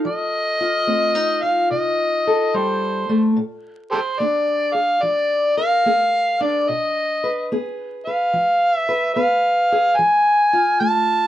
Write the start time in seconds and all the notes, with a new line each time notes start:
Already playing: F4 A4
0.05 F3 D#5
0.61 F4
0.87 A3 C4
1.15 D#4
1.43 F4 F5
1.71 C3 D#5
2.27 A4
2.54 G3 C5
3.09 A3
3.37 A#2
3.91 G4 G#4 A4 C5
4.19 A#3 D4 D5
4.73 G#4 F5
5.02 F3 D5
5.57 A#4 F5
5.86 A#3 G#4
6.41 D4 D5
6.69 B2 D#5
7.24 B4
7.52 B3 G#4
8.05 B4 F5
8.33 F3
8.75 E5
8.89 B4
9.14 B3 B4 F5
9.72 G#4
9.96 F3 G#5
10.53 F4
10.80 A3 A5